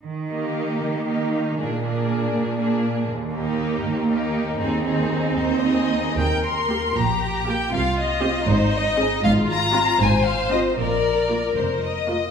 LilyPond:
<<
  \new Staff \with { instrumentName = "Violin section" } { \time 6/8 \key ees \major \tempo 4. = 78 r8 g'4. g'4 | aes'8 aes'4. aes'4 | r8 g'4. g'4 | aes'8 aes'4 c''8 <aes' ees''>4 |
g''8 c'''4 bes''4 g''8 | f''8 ees''4 c''8 ees''4 | f''8 bes''4 aes''8 f''8 ees''8 | d''4. c''8 ees''4 | }
  \new Staff \with { instrumentName = "Violin section" } { \time 6/8 \key ees \major r8 ees'4. ees'4 | d'8 d'4. d'4 | r8 ees'4. ees'4 | ees'8 ees'4. ees'4 |
bes'4. g'4. | f'4. ees'4. | f'4. c''4. | bes'2~ bes'16 r8. | }
  \new Staff \with { instrumentName = "Viola section" } { \time 6/8 \key ees \major r8 bes4. bes4 | bes8 bes4. bes4 | r8 bes4. bes4 | c'8 c'4. c'4 |
r4 <bes g'>8 r4 <bes g'>8 | r4 <c' g'>8 r4 <c' aes'>8 | r4 <c' f'>8 r4 <c' f'>8 | r4 <bes f'>8 r4 <bes f'>8 | }
  \new Staff \with { instrumentName = "Cello section" } { \clef bass \time 6/8 \key ees \major ees4. ees4. | bes,4. bes,4. | ees,4. ees,4. | ees,4. ees,4. |
ees4. bes,4. | c4. aes,4. | aes,4. aes,4. | bes,4. f,4. | }
  \new Staff \with { instrumentName = "Double bass section" } { \clef bass \time 6/8 \key ees \major r2. | r2. | r2. | r2. |
ees,4. bes,,4. | c,4. aes,,4. | aes,,4. aes,,4. | bes,,4. f,,4. | }
>>